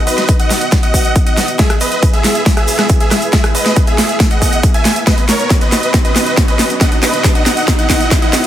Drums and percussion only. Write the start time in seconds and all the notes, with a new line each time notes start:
0.07 open hi-hat, shaker
0.17 snare, closed hi-hat, shaker
0.28 kick, closed hi-hat, shaker
0.40 closed hi-hat, shaker
0.50 snare, open hi-hat, shaker
0.61 closed hi-hat, shaker
0.72 kick, snare, closed hi-hat, shaker
0.83 closed hi-hat, shaker
0.94 kick, open hi-hat, shaker
1.05 closed hi-hat, shaker
1.16 kick, closed hi-hat, shaker
1.27 closed hi-hat, shaker
1.37 snare, open hi-hat, shaker
1.48 closed hi-hat, shaker
1.59 kick, snare, closed hi-hat, shaker
1.70 cross-stick, closed hi-hat, shaker
1.81 open hi-hat, shaker
1.92 closed hi-hat, shaker
2.03 kick, closed hi-hat, shaker
2.13 closed hi-hat, shaker
2.24 snare, open hi-hat, shaker
2.35 closed hi-hat, shaker
2.46 kick, snare, closed hi-hat, shaker
2.57 cross-stick, closed hi-hat, shaker
2.68 open hi-hat, shaker
2.78 cross-stick, snare, closed hi-hat, shaker
2.89 kick, closed hi-hat, shaker
3.00 closed hi-hat, shaker
3.11 cross-stick, snare, open hi-hat, shaker
3.21 closed hi-hat, shaker
3.32 kick, snare, closed hi-hat, shaker
3.44 cross-stick, closed hi-hat, shaker
3.55 open hi-hat, shaker
3.65 snare, closed hi-hat, shaker
3.76 kick, closed hi-hat, shaker
3.87 closed hi-hat, shaker
3.98 snare, open hi-hat, shaker
4.09 closed hi-hat, shaker
4.20 kick, snare, closed hi-hat, shaker
4.31 closed hi-hat, shaker
4.42 kick, open hi-hat, shaker
4.53 closed hi-hat, shaker
4.63 kick, closed hi-hat, shaker
4.74 closed hi-hat, shaker
4.85 snare, open hi-hat, shaker
4.96 closed hi-hat, shaker
5.07 kick, snare, closed hi-hat, shaker
5.18 closed hi-hat, shaker
5.28 snare, open hi-hat, shaker
5.40 closed hi-hat, shaker
5.50 kick, snare, closed hi-hat, shaker
5.61 closed hi-hat, shaker
5.72 snare, open hi-hat, shaker
5.83 closed hi-hat, shaker
5.94 kick, snare, closed hi-hat, shaker
6.05 closed hi-hat, shaker
6.16 snare, open hi-hat, shaker
6.27 closed hi-hat, shaker
6.37 kick, snare, closed hi-hat, shaker
6.48 closed hi-hat, shaker
6.59 snare, open hi-hat, shaker
6.69 closed hi-hat, shaker
6.81 kick, snare, closed hi-hat, shaker
6.92 closed hi-hat, shaker
7.03 snare, open hi-hat, shaker
7.13 closed hi-hat, shaker
7.24 kick, snare, closed hi-hat, shaker
7.35 closed hi-hat, shaker
7.46 snare, open hi-hat, shaker
7.57 closed hi-hat, shaker
7.68 kick, snare, closed hi-hat, shaker
7.79 closed hi-hat, shaker
7.90 kick, snare, open hi-hat, shaker
8.01 closed hi-hat, shaker
8.11 kick, snare, closed hi-hat, shaker
8.22 closed hi-hat, shaker
8.33 snare, open hi-hat, shaker
8.44 shaker